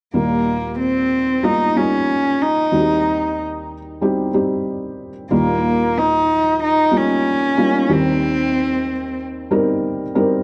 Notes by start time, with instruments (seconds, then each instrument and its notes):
0.14 felt piano D#2 A#2 G3 A#3 D#4 F4, cello A#3
0.79 cello C4
1.43 felt piano G3 A#3 D#4 F4, cello D#4
1.76 felt piano G3 A#3 D#4 F4, cello C#4
2.42 cello D#4
2.72 felt piano D#2 D#3 G3 C4 D#4 F#4
2.79 felt piano G4
4.02 felt piano G3 C4 D#4 G4
4.34 felt piano G3 C4 D#4 G4
5.31 felt piano D#2 A#2 G3 A#3 D#4 F4, cello A#3
5.97 cello D#4
6.63 cello D#4
6.91 felt piano G3 A#3 D#4 F4
6.97 cello C#4
7.57 felt piano G3 A#3 D#4 F4
7.89 felt piano D#2 D#3 G3 C4 D#4 G4, cello C4
9.51 felt piano G3 C4 D#4 A#4
10.15 felt piano G3 C4 D#4 A#4